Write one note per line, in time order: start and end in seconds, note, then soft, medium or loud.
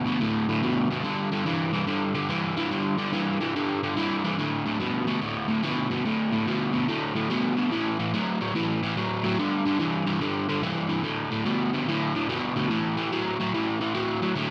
0.06 0.19 D2 medium
0.06 0.20 B2 medium
0.20 0.45 D2 medium
0.20 0.46 A2 medium
0.49 0.61 D2 medium
0.49 0.62 A2 medium
0.63 0.88 D2 medium
0.63 0.88 B2 medium
0.91 1.03 D2 medium
0.91 1.04 B2 medium
1.04 1.29 G2 medium
1.04 1.29 D3 medium
1.33 1.45 G2 medium
1.33 1.46 D3 medium
1.46 1.71 G2 medium
1.46 1.71 E3 loud
1.73 1.86 G2 medium
1.73 1.87 E3 medium
1.87 2.12 G2 medium
1.87 2.12 D3 loud
2.14 2.28 G2 medium
2.14 2.28 D3 medium
2.29 2.54 G2 medium
2.29 2.54 E3 medium
2.57 2.70 G2 medium
2.57 2.70 E3 medium
2.71 2.96 G2 medium
2.71 2.96 D3 medium
2.98 3.12 G2 medium
2.98 3.12 D3 medium
3.13 3.38 G2 medium
3.13 3.38 E3 loud
3.41 3.54 G2 medium
3.41 3.54 E3 medium
3.56 3.80 G2 medium
3.56 3.80 D3 medium
3.83 3.95 G2 medium
3.83 3.96 D3 medium
3.97 4.21 G2 loud
3.97 4.22 E3 loud
4.24 4.37 G2 medium
4.24 4.38 E3 medium
4.39 4.63 D2 medium
4.39 4.64 A2 medium
4.67 4.79 D2 medium
4.67 4.79 A2 medium
4.81 5.05 D2 medium
4.81 5.05 B2 medium
5.08 5.20 D2 medium
5.08 5.21 B2 medium
5.21 5.46 D2 medium
5.21 5.46 A2 medium
5.48 5.62 D2 medium
5.48 5.62 A2 medium
5.63 5.88 D2 medium
5.63 5.88 B2 loud
5.90 6.03 D2 medium
5.90 6.04 B2 medium
6.05 6.30 D2 medium
6.05 6.30 A2 medium
6.32 6.45 D2 medium
6.32 6.45 A2 medium
6.46 6.71 D2 medium
6.46 6.72 B2 medium
6.73 6.87 D2 medium
6.73 6.87 B2 medium
6.88 7.13 D2 medium
6.88 7.13 A2 loud
7.15 7.28 D2 medium
7.15 7.29 A2 medium
7.30 7.55 D2 medium
7.30 7.55 B2 loud
7.57 7.70 D2 medium
7.57 7.70 B2 medium
7.72 7.96 A2 medium
7.72 7.97 E3 medium
7.99 8.12 A2 medium
7.99 8.12 E3 medium
8.14 8.38 A2 medium
8.14 8.38 F#3 medium
8.41 8.54 A2 medium
8.41 8.54 F#3 medium
8.55 8.80 A2 medium
8.55 8.80 E3 medium
8.83 8.95 A2 medium
8.83 8.96 E3 medium
8.97 9.21 A2 loud
8.97 9.22 F#3 medium
9.23 9.37 A2 medium
9.23 9.37 F#3 medium
9.39 9.63 G2 medium
9.39 9.64 D3 medium
9.66 9.79 G2 medium
9.66 9.79 D3 medium
9.80 10.05 G2 medium
9.80 10.05 E3 medium
10.07 10.19 G2 medium
10.07 10.20 E3 medium
10.21 10.46 G2 medium
10.21 10.46 D3 loud
10.49 10.61 G2 medium
10.49 10.62 D3 medium
10.62 10.87 G2 medium
10.62 10.88 E3 loud
10.89 11.03 G2 medium
10.89 11.03 E3 medium
11.03 11.29 D2 medium
11.03 11.29 A2 medium
11.31 11.44 D2 medium
11.31 11.45 A2 medium
11.45 11.70 D2 medium
11.45 11.70 B2 medium
11.73 11.86 D2 medium
11.73 11.86 B2 medium
11.88 12.12 D2 medium
11.88 12.12 A2 loud
12.15 12.28 D2 medium
12.15 12.28 A2 medium
12.29 12.53 D2 medium
12.29 12.54 B2 loud
12.56 12.69 D2 medium
12.56 12.69 B2 medium
12.70 12.95 A2 medium
12.70 12.95 E3 medium
12.97 13.10 A2 medium
12.97 13.10 E3 medium
13.12 13.36 A2 medium
13.12 13.37 F#3 medium
13.40 13.53 A2 medium
13.40 13.53 F#3 medium
13.54 13.78 A2 medium
13.54 13.79 E3 loud
13.81 13.93 A2 medium
13.81 13.94 E3 medium
13.94 14.19 A2 medium
13.94 14.19 F#3 loud
14.22 14.35 A2 medium
14.22 14.35 F#3 medium
14.36 14.50 D2 medium
14.36 14.50 A2 loud